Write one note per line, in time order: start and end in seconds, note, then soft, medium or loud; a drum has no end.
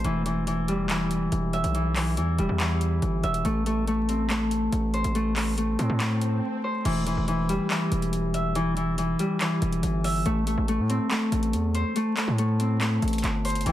0.00 2.52 A3 medium
0.00 1.98 C4 medium
0.00 1.81 C5 medium
0.04 1.28 E1 loud
0.04 0.25 E3 loud
0.04 closed hi-hat loud
0.26 0.46 E3 medium
0.26 closed hi-hat medium
0.47 0.88 E3 medium
0.47 closed hi-hat medium
0.68 2.37 G3 medium
0.68 closed hi-hat medium
0.90 1.74 E3 medium
0.90 clap loud
0.90 closed hi-hat medium
1.11 closed hi-hat medium
1.32 1.63 E1 loud
1.32 closed hi-hat medium
1.53 3.23 E5 medium
1.53 closed hi-hat soft
1.64 2.19 B1 loud
1.64 closed hi-hat medium
1.75 1.95 E3 loud
1.75 closed hi-hat medium
1.96 2.16 E3 medium
1.96 clap loud
1.96 open hi-hat medium
2.17 2.37 E2 loud
2.17 2.59 E3 medium
2.17 closed hi-hat medium
2.38 2.49 E1 loud
2.38 3.50 G3 medium
2.38 closed hi-hat medium
2.49 3.00 E2 loud
2.60 3.50 E3 medium
2.60 clap loud
2.60 closed hi-hat medium
2.81 closed hi-hat medium
3.02 3.23 G1 loud
3.02 closed hi-hat medium
3.24 3.44 E1 loud
3.24 4.96 E5 loud
3.24 closed hi-hat soft
3.34 closed hi-hat medium
3.45 4.69 A1 loud
3.45 3.66 A3 medium
3.45 closed hi-hat medium
3.66 3.87 A3 medium
3.66 closed hi-hat medium
3.87 4.30 A3 medium
3.87 closed hi-hat medium
4.09 5.79 C4 medium
4.09 closed hi-hat medium
4.30 5.15 A3 medium
4.30 clap loud
4.30 closed hi-hat medium
4.51 closed hi-hat medium
4.72 5.03 A1 loud
4.72 closed hi-hat medium
4.94 6.64 C5 medium
4.94 closed hi-hat soft
5.04 5.76 A1 loud
5.04 closed hi-hat medium
5.15 5.36 A3 loud
5.15 closed hi-hat medium
5.15 swell medium
5.36 5.57 A3 medium
5.36 clap loud
5.36 open hi-hat medium
5.58 6.00 A3 medium
5.58 closed hi-hat medium
5.79 5.89 A2 loud
5.79 8.79 C4 medium
5.79 closed hi-hat medium
5.90 6.41 A2 loud
6.00 9.33 A3 medium
6.00 clap loud
6.00 closed hi-hat medium
6.21 closed hi-hat medium
6.64 8.62 C5 medium
6.85 7.16 E1 loud
6.85 7.05 E3 loud
6.85 closed hi-hat medium
6.85 crash loud
7.07 7.27 E3 medium
7.07 closed hi-hat medium
7.17 7.58 E1 loud
7.28 7.69 E3 medium
7.28 closed hi-hat medium
7.49 9.18 G3 medium
7.49 closed hi-hat medium
7.70 8.54 E3 medium
7.70 clap loud
7.70 closed hi-hat medium
7.92 9.15 E1 loud
7.92 closed hi-hat medium
8.02 closed hi-hat soft
8.13 closed hi-hat medium
8.34 10.04 E5 medium
8.34 closed hi-hat medium
8.55 8.76 E3 loud
8.55 closed hi-hat loud
8.77 8.97 E3 medium
8.77 closed hi-hat medium
8.98 9.39 E3 medium
8.98 closed hi-hat medium
9.19 10.31 G3 medium
9.19 closed hi-hat medium
9.41 10.31 E3 loud
9.41 clap loud
9.41 closed hi-hat medium
9.62 9.82 E1 loud
9.62 closed hi-hat medium
9.72 closed hi-hat soft
9.83 10.24 G1 loud
9.83 closed hi-hat medium
10.04 11.77 E5 loud
10.04 open hi-hat medium
10.26 10.56 A1 loud
10.26 10.47 A3 loud
10.26 closed hi-hat loud
10.47 10.68 A3 medium
10.47 closed hi-hat medium
10.58 10.80 A1 loud
10.68 11.10 A3 medium
10.68 closed hi-hat medium
10.79 10.99 A2 loud
10.90 12.59 C4 medium
10.90 closed hi-hat medium
11.11 11.96 A3 medium
11.11 clap loud
11.11 closed hi-hat medium
11.32 11.55 A1 loud
11.32 closed hi-hat medium
11.43 closed hi-hat soft
11.53 11.84 E2 loud
11.53 closed hi-hat medium
11.75 13.44 C5 medium
11.75 closed hi-hat medium
11.96 12.17 A3 loud
11.96 closed hi-hat loud
12.17 12.38 A3 medium
12.17 clap loud
12.17 closed hi-hat medium
12.28 12.99 A2 loud
12.38 12.81 A3 medium
12.38 closed hi-hat medium
12.60 13.72 C4 medium
12.60 closed hi-hat medium
12.81 13.72 A3 medium
12.81 clap loud
12.81 closed hi-hat medium
13.02 13.23 A1 loud
13.02 closed hi-hat soft
13.08 closed hi-hat medium
13.13 closed hi-hat medium
13.18 closed hi-hat medium
13.24 13.64 G1 loud
13.24 clap medium
13.24 closed hi-hat medium
13.45 13.72 C5 medium
13.45 closed hi-hat soft
13.45 open hi-hat medium
13.50 closed hi-hat medium
13.55 closed hi-hat medium
13.61 closed hi-hat medium
13.66 13.72 E1 loud
13.66 13.72 E3 medium
13.66 13.72 E3 loud
13.66 13.72 E4 medium
13.66 13.72 B4 medium
13.66 13.72 G5 medium
13.66 closed hi-hat loud